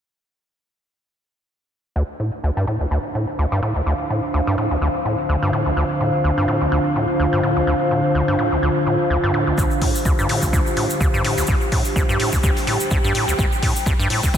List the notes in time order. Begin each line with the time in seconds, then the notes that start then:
1.96 D2 D3 D4 F4 C5
2.20 A2
2.44 D2
2.51 C5
2.57 G2
2.67 A2
2.81 D2
2.91 D2
3.02 F5
3.15 A2
3.39 D2
3.52 G2
3.63 A2
3.76 D2
3.86 D2
4.10 A2
4.34 D2
4.47 G2
4.58 A2
4.71 D2
4.82 D2
5.05 A2
5.29 D2
5.42 G2
5.53 A2
5.66 D2
5.77 D2
6.01 A2
6.24 D2
6.38 G2
6.48 A2
6.61 D2
6.72 D2
6.96 A2
7.20 D2
7.33 G2
7.43 A2
7.57 D2
7.67 D2
7.91 A2
8.15 D2
8.28 G2
8.39 A2
8.52 D2
8.63 D2
8.86 A2
9.10 D2
9.23 G2
9.34 A2
9.47 D2
9.58 D2 G4, kick, shaker
9.71 shaker
9.82 A2, kick, open hi-hat
9.95 shaker
10.05 D2, kick, shaker
10.19 G2, shaker
10.29 A2, open hi-hat
10.42 D2, kick, shaker
10.53 D2, kick, shaker
10.67 shaker
10.77 A2, open hi-hat
10.90 shaker
11.01 D2, kick, shaker
11.14 G2, shaker
11.24 A2, open hi-hat
11.38 D2, open hi-hat, shaker
11.47 D2, kick, shaker
11.61 shaker
11.72 A2, kick, open hi-hat
11.85 shaker
11.96 D2 G5, kick, shaker
12.09 G2, shaker
12.19 A2, open hi-hat
12.32 D2, kick, shaker
12.43 D2, kick, shaker
12.57 open hi-hat, shaker
12.67 A2, open hi-hat
12.80 shaker
12.91 D2, kick, shaker
13.04 G2, shaker
13.15 A2, open hi-hat
13.28 D2, shaker
13.39 D2, kick, shaker
13.52 shaker
13.62 A2, kick, open hi-hat
13.76 shaker
13.86 D2, kick, shaker
13.99 G2, shaker
14.10 A2, open hi-hat
14.23 D2, kick, shaker
14.34 D2, kick, shaker